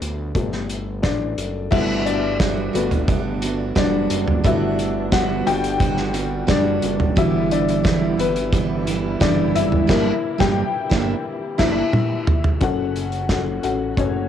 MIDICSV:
0, 0, Header, 1, 6, 480
1, 0, Start_track
1, 0, Tempo, 681044
1, 1210, Time_signature, 4, 2, 24, 8
1, 10069, End_track
2, 0, Start_track
2, 0, Title_t, "Upright piano"
2, 0, Program_c, 0, 0
2, 0, Control_c, 0, 64, 127
2, 0, Note_on_c, 0, 55, 48
2, 0, Note_on_c, 0, 57, 48
2, 0, Note_on_c, 0, 59, 54
2, 0, Note_on_c, 0, 62, 65
2, 0, Note_on_c, 0, 71, 68
2, 0, Note_on_c, 0, 74, 83
2, 226, Note_off_c, 0, 59, 0
2, 242, Note_on_c, 0, 69, 62
2, 253, Note_off_c, 0, 55, 0
2, 253, Note_off_c, 0, 57, 0
2, 253, Note_on_c, 0, 55, 37
2, 253, Note_on_c, 0, 57, 50
2, 256, Note_off_c, 0, 71, 0
2, 257, Note_on_c, 0, 59, 41
2, 468, Note_off_c, 0, 55, 0
2, 470, Note_off_c, 0, 59, 0
2, 698, Note_off_c, 0, 69, 0
2, 708, Note_off_c, 0, 57, 0
2, 722, Note_off_c, 0, 74, 0
2, 722, Note_on_c, 0, 74, 72
2, 736, Note_off_c, 0, 62, 0
2, 736, Note_on_c, 0, 62, 55
2, 1069, Note_off_c, 0, 62, 0
2, 1182, Note_off_c, 0, 74, 0
2, 1205, Note_on_c, 0, 57, 51
2, 1205, Note_on_c, 0, 76, 90
2, 1209, Note_on_c, 0, 59, 47
2, 1212, Note_on_c, 0, 66, 63
2, 1213, Note_on_c, 0, 64, 69
2, 1219, Control_c, 0, 64, 0
2, 1353, Control_c, 0, 64, 127
2, 1382, Note_off_c, 0, 76, 0
2, 1389, Note_off_c, 0, 64, 0
2, 1392, Note_on_c, 0, 76, 66
2, 1446, Note_off_c, 0, 76, 0
2, 1448, Note_on_c, 0, 74, 93
2, 1454, Note_on_c, 0, 62, 67
2, 1900, Note_off_c, 0, 57, 0
2, 1901, Note_off_c, 0, 59, 0
2, 1903, Note_off_c, 0, 66, 0
2, 1904, Note_off_c, 0, 62, 0
2, 1933, Note_on_c, 0, 57, 48
2, 1936, Note_on_c, 0, 59, 68
2, 1938, Note_on_c, 0, 71, 85
2, 1940, Note_on_c, 0, 66, 51
2, 1943, Note_off_c, 0, 74, 0
2, 2148, Note_off_c, 0, 57, 0
2, 2152, Note_off_c, 0, 66, 0
2, 2628, Note_off_c, 0, 59, 0
2, 2661, Note_on_c, 0, 74, 99
2, 2667, Note_on_c, 0, 62, 71
2, 2675, Note_off_c, 0, 71, 0
2, 3110, Note_off_c, 0, 62, 0
2, 3134, Note_on_c, 0, 57, 54
2, 3138, Note_on_c, 0, 59, 53
2, 3144, Note_on_c, 0, 66, 65
2, 3144, Note_on_c, 0, 76, 91
2, 3145, Note_on_c, 0, 64, 73
2, 3150, Note_off_c, 0, 74, 0
2, 3451, Note_off_c, 0, 57, 0
2, 3454, Note_off_c, 0, 59, 0
2, 3456, Note_off_c, 0, 66, 0
2, 3590, Note_off_c, 0, 64, 0
2, 3613, Note_on_c, 0, 78, 99
2, 3614, Note_on_c, 0, 66, 81
2, 3631, Note_off_c, 0, 76, 0
2, 3836, Note_off_c, 0, 66, 0
2, 3853, Note_on_c, 0, 79, 116
2, 3856, Note_on_c, 0, 55, 82
2, 3859, Note_off_c, 0, 78, 0
2, 4544, Note_off_c, 0, 79, 0
2, 4545, Note_off_c, 0, 55, 0
2, 4573, Note_on_c, 0, 74, 100
2, 4578, Note_on_c, 0, 62, 76
2, 5026, Note_off_c, 0, 62, 0
2, 5049, Note_on_c, 0, 55, 58
2, 5052, Note_on_c, 0, 62, 50
2, 5058, Note_on_c, 0, 76, 100
2, 5059, Note_on_c, 0, 66, 62
2, 5060, Note_on_c, 0, 64, 78
2, 5061, Control_c, 0, 64, 0
2, 5066, Note_off_c, 0, 74, 0
2, 5177, Control_c, 0, 64, 127
2, 5279, Note_off_c, 0, 64, 0
2, 5286, Note_off_c, 0, 62, 0
2, 5297, Note_on_c, 0, 62, 72
2, 5297, Note_on_c, 0, 74, 93
2, 5302, Note_off_c, 0, 76, 0
2, 5369, Note_off_c, 0, 55, 0
2, 5374, Note_off_c, 0, 66, 0
2, 5746, Note_off_c, 0, 62, 0
2, 5778, Note_on_c, 0, 59, 72
2, 5778, Note_on_c, 0, 71, 103
2, 5788, Note_off_c, 0, 74, 0
2, 6466, Note_off_c, 0, 59, 0
2, 6466, Note_off_c, 0, 71, 0
2, 6493, Note_on_c, 0, 74, 86
2, 6500, Note_on_c, 0, 62, 74
2, 6715, Note_off_c, 0, 74, 0
2, 6719, Note_off_c, 0, 62, 0
2, 6734, Note_on_c, 0, 76, 107
2, 6738, Note_on_c, 0, 64, 78
2, 6956, Note_off_c, 0, 76, 0
2, 6958, Note_off_c, 0, 64, 0
2, 6972, Note_on_c, 0, 58, 96
2, 6977, Note_on_c, 0, 64, 102
2, 6981, Control_c, 0, 64, 0
2, 7098, Control_c, 0, 64, 127
2, 7135, Note_off_c, 0, 58, 0
2, 7138, Note_off_c, 0, 64, 0
2, 7330, Note_on_c, 0, 79, 105
2, 7335, Note_on_c, 0, 67, 102
2, 7494, Note_off_c, 0, 79, 0
2, 7497, Note_off_c, 0, 67, 0
2, 8165, Note_on_c, 0, 76, 96
2, 8174, Note_on_c, 0, 64, 91
2, 8332, Note_off_c, 0, 76, 0
2, 8337, Note_off_c, 0, 64, 0
2, 8885, Note_on_c, 0, 61, 96
2, 8890, Note_on_c, 0, 66, 88
2, 8896, Note_on_c, 0, 69, 92
2, 8899, Note_on_c, 0, 78, 110
2, 8903, Control_c, 0, 64, 0
2, 9012, Control_c, 0, 64, 127
2, 9248, Note_off_c, 0, 61, 0
2, 9251, Note_off_c, 0, 66, 0
2, 9254, Note_off_c, 0, 69, 0
2, 9255, Note_off_c, 0, 78, 0
2, 9369, Note_on_c, 0, 61, 67
2, 9371, Note_on_c, 0, 66, 66
2, 9374, Note_on_c, 0, 69, 73
2, 9382, Note_on_c, 0, 78, 78
2, 9551, Note_off_c, 0, 61, 0
2, 9552, Note_off_c, 0, 66, 0
2, 9553, Note_off_c, 0, 69, 0
2, 9558, Note_off_c, 0, 78, 0
2, 9599, Note_on_c, 0, 61, 67
2, 9604, Note_on_c, 0, 66, 65
2, 9607, Note_on_c, 0, 69, 62
2, 9613, Note_on_c, 0, 78, 78
2, 9786, Note_off_c, 0, 61, 0
2, 9789, Note_off_c, 0, 66, 0
2, 9790, Note_off_c, 0, 69, 0
2, 9793, Note_off_c, 0, 78, 0
2, 9846, Note_on_c, 0, 61, 73
2, 9850, Note_on_c, 0, 66, 61
2, 9854, Note_on_c, 0, 69, 64
2, 9859, Note_on_c, 0, 73, 80
2, 10069, Note_off_c, 0, 61, 0
2, 10069, Note_off_c, 0, 66, 0
2, 10069, Note_off_c, 0, 69, 0
2, 10069, Note_off_c, 0, 73, 0
2, 10069, End_track
3, 0, Start_track
3, 0, Title_t, "Steel-string acoustic guitar"
3, 0, Program_c, 1, 25
3, 1203, Note_on_c, 1, 55, 90
3, 1210, Note_on_c, 1, 59, 83
3, 1212, Note_on_c, 1, 62, 85
3, 1218, Note_on_c, 1, 66, 93
3, 1689, Note_off_c, 1, 55, 0
3, 1691, Note_on_c, 1, 55, 82
3, 1693, Note_off_c, 1, 59, 0
3, 1694, Note_off_c, 1, 66, 0
3, 1695, Note_off_c, 1, 62, 0
3, 1695, Note_on_c, 1, 59, 88
3, 1697, Note_on_c, 1, 62, 83
3, 1704, Note_on_c, 1, 66, 86
3, 1916, Note_off_c, 1, 66, 0
3, 1925, Note_on_c, 1, 66, 67
3, 1930, Note_off_c, 1, 62, 0
3, 1931, Note_off_c, 1, 55, 0
3, 1933, Note_off_c, 1, 59, 0
3, 1938, Note_on_c, 1, 62, 58
3, 1948, Note_on_c, 1, 59, 51
3, 2167, Note_off_c, 1, 66, 0
3, 2170, Note_off_c, 1, 59, 0
3, 2171, Note_on_c, 1, 55, 65
3, 2174, Note_off_c, 1, 62, 0
3, 2179, Note_on_c, 1, 59, 64
3, 2185, Note_on_c, 1, 62, 76
3, 2189, Note_on_c, 1, 66, 70
3, 2400, Note_off_c, 1, 66, 0
3, 2408, Note_on_c, 1, 66, 61
3, 2411, Note_off_c, 1, 55, 0
3, 2413, Note_off_c, 1, 62, 0
3, 2415, Note_off_c, 1, 59, 0
3, 2421, Note_on_c, 1, 62, 61
3, 2426, Note_on_c, 1, 59, 50
3, 2644, Note_off_c, 1, 59, 0
3, 2646, Note_on_c, 1, 55, 84
3, 2649, Note_off_c, 1, 66, 0
3, 2650, Note_off_c, 1, 62, 0
3, 2653, Note_on_c, 1, 59, 100
3, 2658, Note_on_c, 1, 62, 97
3, 2662, Note_on_c, 1, 66, 97
3, 3124, Note_off_c, 1, 55, 0
3, 3127, Note_on_c, 1, 55, 94
3, 3128, Note_off_c, 1, 59, 0
3, 3130, Note_off_c, 1, 66, 0
3, 3131, Note_on_c, 1, 59, 94
3, 3135, Note_off_c, 1, 62, 0
3, 3138, Note_on_c, 1, 62, 94
3, 3138, Note_on_c, 1, 66, 99
3, 3604, Note_off_c, 1, 55, 0
3, 3606, Note_on_c, 1, 55, 88
3, 3611, Note_off_c, 1, 59, 0
3, 3611, Note_off_c, 1, 66, 0
3, 3613, Note_off_c, 1, 62, 0
3, 3614, Note_on_c, 1, 59, 92
3, 3616, Note_on_c, 1, 62, 92
3, 3619, Note_on_c, 1, 66, 98
3, 3842, Note_off_c, 1, 66, 0
3, 3848, Note_off_c, 1, 55, 0
3, 3850, Note_on_c, 1, 66, 62
3, 3851, Note_off_c, 1, 62, 0
3, 3852, Note_off_c, 1, 59, 0
3, 3859, Note_on_c, 1, 62, 55
3, 3868, Note_on_c, 1, 59, 49
3, 4084, Note_on_c, 1, 55, 63
3, 4087, Note_off_c, 1, 59, 0
3, 4090, Note_off_c, 1, 66, 0
3, 4092, Note_off_c, 1, 62, 0
3, 4096, Note_on_c, 1, 59, 80
3, 4101, Note_on_c, 1, 62, 75
3, 4106, Note_on_c, 1, 66, 83
3, 4313, Note_off_c, 1, 66, 0
3, 4322, Note_on_c, 1, 66, 60
3, 4324, Note_off_c, 1, 62, 0
3, 4327, Note_off_c, 1, 55, 0
3, 4332, Note_on_c, 1, 62, 53
3, 4333, Note_off_c, 1, 59, 0
3, 4341, Note_on_c, 1, 59, 48
3, 4558, Note_off_c, 1, 59, 0
3, 4560, Note_on_c, 1, 55, 88
3, 4564, Note_off_c, 1, 62, 0
3, 4566, Note_off_c, 1, 66, 0
3, 4566, Note_on_c, 1, 59, 102
3, 4573, Note_on_c, 1, 62, 106
3, 4575, Note_on_c, 1, 66, 98
3, 5043, Note_on_c, 1, 43, 93
3, 5046, Note_off_c, 1, 55, 0
3, 5049, Note_on_c, 1, 50, 98
3, 5049, Note_on_c, 1, 52, 97
3, 5053, Note_off_c, 1, 59, 0
3, 5053, Note_off_c, 1, 62, 0
3, 5053, Note_off_c, 1, 66, 0
3, 5056, Note_on_c, 1, 55, 94
3, 5056, Note_on_c, 1, 59, 96
3, 5060, Note_on_c, 1, 64, 107
3, 5514, Note_off_c, 1, 43, 0
3, 5522, Note_on_c, 1, 43, 88
3, 5523, Note_off_c, 1, 50, 0
3, 5525, Note_off_c, 1, 52, 0
3, 5526, Note_on_c, 1, 50, 96
3, 5528, Note_off_c, 1, 59, 0
3, 5528, Note_on_c, 1, 52, 101
3, 5530, Note_off_c, 1, 55, 0
3, 5533, Note_on_c, 1, 55, 89
3, 5536, Note_off_c, 1, 64, 0
3, 5536, Note_on_c, 1, 59, 97
3, 5539, Note_on_c, 1, 64, 93
3, 5751, Note_off_c, 1, 64, 0
3, 5760, Note_on_c, 1, 64, 62
3, 5761, Note_off_c, 1, 59, 0
3, 5766, Note_off_c, 1, 43, 0
3, 5768, Note_off_c, 1, 55, 0
3, 5769, Note_off_c, 1, 50, 0
3, 5769, Note_off_c, 1, 52, 0
3, 5769, Note_on_c, 1, 59, 58
3, 5776, Note_on_c, 1, 55, 55
3, 5780, Note_on_c, 1, 52, 51
3, 5997, Note_off_c, 1, 52, 0
3, 6002, Note_off_c, 1, 55, 0
3, 6005, Note_off_c, 1, 64, 0
3, 6006, Note_on_c, 1, 52, 64
3, 6010, Note_off_c, 1, 59, 0
3, 6010, Note_on_c, 1, 55, 70
3, 6019, Note_on_c, 1, 59, 73
3, 6025, Note_on_c, 1, 64, 91
3, 6240, Note_off_c, 1, 64, 0
3, 6246, Note_off_c, 1, 59, 0
3, 6249, Note_off_c, 1, 52, 0
3, 6249, Note_on_c, 1, 64, 60
3, 6251, Note_off_c, 1, 55, 0
3, 6255, Note_on_c, 1, 59, 58
3, 6265, Note_on_c, 1, 55, 49
3, 6269, Note_on_c, 1, 52, 53
3, 6482, Note_off_c, 1, 52, 0
3, 6485, Note_on_c, 1, 43, 85
3, 6486, Note_off_c, 1, 55, 0
3, 6488, Note_on_c, 1, 50, 84
3, 6490, Note_off_c, 1, 59, 0
3, 6490, Note_off_c, 1, 64, 0
3, 6491, Note_on_c, 1, 52, 91
3, 6494, Note_on_c, 1, 55, 106
3, 6498, Note_on_c, 1, 59, 97
3, 6498, Note_on_c, 1, 64, 103
3, 6956, Note_off_c, 1, 52, 0
3, 6959, Note_off_c, 1, 55, 0
3, 6959, Note_on_c, 1, 55, 98
3, 6966, Note_on_c, 1, 58, 96
3, 6968, Note_off_c, 1, 43, 0
3, 6969, Note_off_c, 1, 59, 0
3, 6969, Note_off_c, 1, 64, 0
3, 6971, Note_on_c, 1, 62, 95
3, 6972, Note_on_c, 1, 64, 101
3, 6993, Note_off_c, 1, 50, 0
3, 7127, Note_off_c, 1, 55, 0
3, 7132, Note_off_c, 1, 58, 0
3, 7135, Note_off_c, 1, 62, 0
3, 7135, Note_off_c, 1, 64, 0
3, 7317, Note_on_c, 1, 55, 96
3, 7324, Note_on_c, 1, 58, 87
3, 7327, Note_on_c, 1, 62, 97
3, 7333, Note_on_c, 1, 64, 85
3, 7487, Note_off_c, 1, 55, 0
3, 7491, Note_off_c, 1, 58, 0
3, 7493, Note_off_c, 1, 62, 0
3, 7496, Note_off_c, 1, 64, 0
3, 7679, Note_on_c, 1, 64, 100
3, 7691, Note_on_c, 1, 62, 94
3, 7699, Note_on_c, 1, 58, 98
3, 7848, Note_off_c, 1, 64, 0
3, 7855, Note_off_c, 1, 62, 0
3, 7859, Note_off_c, 1, 58, 0
3, 8162, Note_on_c, 1, 64, 100
3, 8172, Note_on_c, 1, 62, 98
3, 8182, Note_on_c, 1, 58, 97
3, 8330, Note_off_c, 1, 64, 0
3, 8336, Note_off_c, 1, 62, 0
3, 8342, Note_off_c, 1, 58, 0
3, 10069, End_track
4, 0, Start_track
4, 0, Title_t, "String section"
4, 0, Program_c, 2, 48
4, 1202, Note_on_c, 2, 62, 75
4, 1204, Note_on_c, 2, 55, 67
4, 1205, Note_on_c, 2, 50, 75
4, 1206, Note_on_c, 2, 59, 68
4, 5018, Note_off_c, 2, 62, 0
4, 5057, Note_on_c, 2, 52, 71
4, 5058, Note_on_c, 2, 64, 86
4, 6941, Note_off_c, 2, 59, 0
4, 6966, Note_on_c, 2, 58, 74
4, 8862, Note_off_c, 2, 50, 0
4, 8862, Note_off_c, 2, 55, 0
4, 8869, Note_off_c, 2, 52, 0
4, 8869, Note_off_c, 2, 64, 0
4, 8871, Note_off_c, 2, 58, 0
4, 8885, Note_on_c, 2, 49, 54
4, 8887, Note_on_c, 2, 61, 61
4, 8890, Note_on_c, 2, 45, 64
4, 8890, Note_on_c, 2, 54, 53
4, 8893, Note_on_c, 2, 66, 67
4, 10069, Note_off_c, 2, 45, 0
4, 10069, Note_off_c, 2, 49, 0
4, 10069, Note_off_c, 2, 54, 0
4, 10069, Note_off_c, 2, 61, 0
4, 10069, Note_off_c, 2, 66, 0
4, 10069, End_track
5, 0, Start_track
5, 0, Title_t, "Analog synth bass"
5, 0, Program_c, 3, 38
5, 10, Note_on_c, 3, 38, 88
5, 233, Note_off_c, 3, 38, 0
5, 247, Note_on_c, 3, 31, 93
5, 732, Note_on_c, 3, 33, 90
5, 742, Note_off_c, 3, 31, 0
5, 954, Note_off_c, 3, 33, 0
5, 969, Note_on_c, 3, 30, 81
5, 1193, Note_off_c, 3, 30, 0
5, 1211, Note_on_c, 3, 31, 99
5, 1902, Note_off_c, 3, 31, 0
5, 1933, Note_on_c, 3, 31, 109
5, 2623, Note_off_c, 3, 31, 0
5, 2652, Note_on_c, 3, 30, 94
5, 2874, Note_off_c, 3, 30, 0
5, 2892, Note_on_c, 3, 30, 96
5, 3114, Note_off_c, 3, 30, 0
5, 3132, Note_on_c, 3, 31, 97
5, 3823, Note_off_c, 3, 31, 0
5, 3855, Note_on_c, 3, 31, 103
5, 4545, Note_off_c, 3, 31, 0
5, 4571, Note_on_c, 3, 30, 81
5, 4794, Note_off_c, 3, 30, 0
5, 4815, Note_on_c, 3, 30, 90
5, 5036, Note_off_c, 3, 30, 0
5, 5052, Note_on_c, 3, 31, 105
5, 5743, Note_off_c, 3, 31, 0
5, 5764, Note_on_c, 3, 31, 107
5, 6459, Note_off_c, 3, 31, 0
5, 6491, Note_on_c, 3, 30, 90
5, 6715, Note_off_c, 3, 30, 0
5, 6731, Note_on_c, 3, 30, 85
5, 6954, Note_off_c, 3, 30, 0
5, 6971, Note_on_c, 3, 31, 114
5, 7134, Note_off_c, 3, 31, 0
5, 7331, Note_on_c, 3, 31, 102
5, 7495, Note_off_c, 3, 31, 0
5, 7692, Note_on_c, 3, 31, 108
5, 7855, Note_off_c, 3, 31, 0
5, 8172, Note_on_c, 3, 31, 109
5, 8336, Note_off_c, 3, 31, 0
5, 8894, Note_on_c, 3, 30, 94
5, 9586, Note_off_c, 3, 30, 0
5, 9612, Note_on_c, 3, 33, 78
5, 9837, Note_off_c, 3, 33, 0
5, 9850, Note_on_c, 3, 30, 95
5, 10069, Note_off_c, 3, 30, 0
5, 10069, End_track
6, 0, Start_track
6, 0, Title_t, "Drums"
6, 12, Note_on_c, 9, 42, 64
6, 83, Note_off_c, 9, 42, 0
6, 246, Note_on_c, 9, 36, 95
6, 246, Note_on_c, 9, 42, 73
6, 317, Note_off_c, 9, 36, 0
6, 317, Note_off_c, 9, 42, 0
6, 367, Note_on_c, 9, 38, 31
6, 438, Note_off_c, 9, 38, 0
6, 489, Note_on_c, 9, 42, 62
6, 560, Note_off_c, 9, 42, 0
6, 727, Note_on_c, 9, 38, 72
6, 727, Note_on_c, 9, 42, 64
6, 731, Note_on_c, 9, 36, 73
6, 798, Note_off_c, 9, 38, 0
6, 798, Note_off_c, 9, 42, 0
6, 801, Note_off_c, 9, 36, 0
6, 972, Note_on_c, 9, 42, 69
6, 1043, Note_off_c, 9, 42, 0
6, 1212, Note_on_c, 9, 49, 96
6, 1213, Note_on_c, 9, 36, 114
6, 1282, Note_off_c, 9, 49, 0
6, 1283, Note_off_c, 9, 36, 0
6, 1455, Note_on_c, 9, 42, 61
6, 1526, Note_off_c, 9, 42, 0
6, 1691, Note_on_c, 9, 36, 112
6, 1692, Note_on_c, 9, 38, 109
6, 1693, Note_on_c, 9, 42, 76
6, 1762, Note_off_c, 9, 36, 0
6, 1763, Note_off_c, 9, 38, 0
6, 1763, Note_off_c, 9, 42, 0
6, 1940, Note_on_c, 9, 42, 67
6, 2010, Note_off_c, 9, 42, 0
6, 2053, Note_on_c, 9, 43, 58
6, 2055, Note_on_c, 9, 42, 42
6, 2123, Note_off_c, 9, 43, 0
6, 2126, Note_off_c, 9, 42, 0
6, 2171, Note_on_c, 9, 36, 116
6, 2174, Note_on_c, 9, 42, 73
6, 2242, Note_off_c, 9, 36, 0
6, 2244, Note_off_c, 9, 42, 0
6, 2411, Note_on_c, 9, 42, 77
6, 2481, Note_off_c, 9, 42, 0
6, 2650, Note_on_c, 9, 38, 89
6, 2650, Note_on_c, 9, 42, 66
6, 2652, Note_on_c, 9, 36, 98
6, 2721, Note_off_c, 9, 38, 0
6, 2721, Note_off_c, 9, 42, 0
6, 2723, Note_off_c, 9, 36, 0
6, 2890, Note_on_c, 9, 42, 84
6, 2961, Note_off_c, 9, 42, 0
6, 3014, Note_on_c, 9, 43, 58
6, 3084, Note_off_c, 9, 43, 0
6, 3133, Note_on_c, 9, 42, 85
6, 3134, Note_on_c, 9, 36, 118
6, 3204, Note_off_c, 9, 36, 0
6, 3204, Note_off_c, 9, 42, 0
6, 3376, Note_on_c, 9, 42, 56
6, 3446, Note_off_c, 9, 42, 0
6, 3610, Note_on_c, 9, 36, 115
6, 3610, Note_on_c, 9, 38, 110
6, 3611, Note_on_c, 9, 42, 91
6, 3680, Note_off_c, 9, 38, 0
6, 3681, Note_off_c, 9, 36, 0
6, 3681, Note_off_c, 9, 42, 0
6, 3855, Note_on_c, 9, 42, 75
6, 3926, Note_off_c, 9, 42, 0
6, 3975, Note_on_c, 9, 42, 48
6, 4045, Note_off_c, 9, 42, 0
6, 4090, Note_on_c, 9, 36, 112
6, 4092, Note_on_c, 9, 42, 76
6, 4160, Note_off_c, 9, 36, 0
6, 4162, Note_off_c, 9, 42, 0
6, 4207, Note_on_c, 9, 38, 37
6, 4278, Note_off_c, 9, 38, 0
6, 4328, Note_on_c, 9, 42, 76
6, 4398, Note_off_c, 9, 42, 0
6, 4569, Note_on_c, 9, 38, 98
6, 4569, Note_on_c, 9, 42, 70
6, 4572, Note_on_c, 9, 36, 92
6, 4640, Note_off_c, 9, 38, 0
6, 4640, Note_off_c, 9, 42, 0
6, 4642, Note_off_c, 9, 36, 0
6, 4809, Note_on_c, 9, 42, 85
6, 4880, Note_off_c, 9, 42, 0
6, 4932, Note_on_c, 9, 43, 65
6, 5002, Note_off_c, 9, 43, 0
6, 5052, Note_on_c, 9, 36, 121
6, 5053, Note_on_c, 9, 42, 77
6, 5123, Note_off_c, 9, 36, 0
6, 5124, Note_off_c, 9, 42, 0
6, 5295, Note_on_c, 9, 42, 61
6, 5365, Note_off_c, 9, 42, 0
6, 5416, Note_on_c, 9, 42, 47
6, 5486, Note_off_c, 9, 42, 0
6, 5531, Note_on_c, 9, 36, 116
6, 5534, Note_on_c, 9, 38, 103
6, 5535, Note_on_c, 9, 42, 87
6, 5601, Note_off_c, 9, 36, 0
6, 5604, Note_off_c, 9, 38, 0
6, 5605, Note_off_c, 9, 42, 0
6, 5775, Note_on_c, 9, 42, 75
6, 5846, Note_off_c, 9, 42, 0
6, 5891, Note_on_c, 9, 42, 47
6, 5962, Note_off_c, 9, 42, 0
6, 6009, Note_on_c, 9, 36, 116
6, 6014, Note_on_c, 9, 42, 87
6, 6080, Note_off_c, 9, 36, 0
6, 6085, Note_off_c, 9, 42, 0
6, 6253, Note_on_c, 9, 42, 81
6, 6323, Note_off_c, 9, 42, 0
6, 6492, Note_on_c, 9, 36, 100
6, 6493, Note_on_c, 9, 38, 94
6, 6493, Note_on_c, 9, 42, 76
6, 6562, Note_off_c, 9, 36, 0
6, 6564, Note_off_c, 9, 38, 0
6, 6564, Note_off_c, 9, 42, 0
6, 6736, Note_on_c, 9, 42, 84
6, 6806, Note_off_c, 9, 42, 0
6, 6852, Note_on_c, 9, 43, 59
6, 6923, Note_off_c, 9, 43, 0
6, 6971, Note_on_c, 9, 36, 100
6, 6973, Note_on_c, 9, 38, 109
6, 6973, Note_on_c, 9, 49, 84
6, 7042, Note_off_c, 9, 36, 0
6, 7044, Note_off_c, 9, 38, 0
6, 7044, Note_off_c, 9, 49, 0
6, 7332, Note_on_c, 9, 36, 104
6, 7333, Note_on_c, 9, 38, 95
6, 7402, Note_off_c, 9, 36, 0
6, 7404, Note_off_c, 9, 38, 0
6, 7692, Note_on_c, 9, 36, 111
6, 7692, Note_on_c, 9, 38, 100
6, 7762, Note_off_c, 9, 36, 0
6, 7763, Note_off_c, 9, 38, 0
6, 8170, Note_on_c, 9, 38, 97
6, 8170, Note_on_c, 9, 49, 83
6, 8171, Note_on_c, 9, 36, 108
6, 8241, Note_off_c, 9, 38, 0
6, 8241, Note_off_c, 9, 49, 0
6, 8242, Note_off_c, 9, 36, 0
6, 8412, Note_on_c, 9, 47, 79
6, 8482, Note_off_c, 9, 47, 0
6, 8651, Note_on_c, 9, 43, 109
6, 8721, Note_off_c, 9, 43, 0
6, 8770, Note_on_c, 9, 43, 94
6, 8841, Note_off_c, 9, 43, 0
6, 8887, Note_on_c, 9, 42, 76
6, 8891, Note_on_c, 9, 36, 108
6, 8957, Note_off_c, 9, 42, 0
6, 8961, Note_off_c, 9, 36, 0
6, 9134, Note_on_c, 9, 42, 56
6, 9204, Note_off_c, 9, 42, 0
6, 9248, Note_on_c, 9, 42, 41
6, 9319, Note_off_c, 9, 42, 0
6, 9368, Note_on_c, 9, 38, 97
6, 9369, Note_on_c, 9, 36, 104
6, 9369, Note_on_c, 9, 42, 68
6, 9438, Note_off_c, 9, 38, 0
6, 9439, Note_off_c, 9, 42, 0
6, 9440, Note_off_c, 9, 36, 0
6, 9609, Note_on_c, 9, 42, 58
6, 9680, Note_off_c, 9, 42, 0
6, 9848, Note_on_c, 9, 42, 70
6, 9849, Note_on_c, 9, 36, 99
6, 9919, Note_off_c, 9, 36, 0
6, 9919, Note_off_c, 9, 42, 0
6, 10069, End_track
0, 0, End_of_file